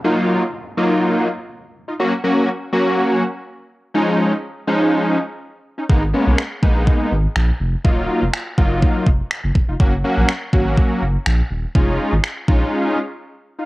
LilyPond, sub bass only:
\new Staff \with { instrumentName = "Sub bass" } { \clef bass \time 4/4 \key fis \major \tempo 4 = 123 r1 | r1 | r1 | gis,,8. b,,16 r8 ais,,8. r16 gis,,8 ais,,8 eis,,8 |
dis,,8. eis,,16 r8 fis,,8. r16 eis,,8 r16 fis,,16 dis,,16 eis,,16 | fis,,8. ais,,16 r8 gis,,8. r16 fis,,8 ais,,8 dis,,8 | eis,,8. gis,,16 r8 ais,,8 r2 | }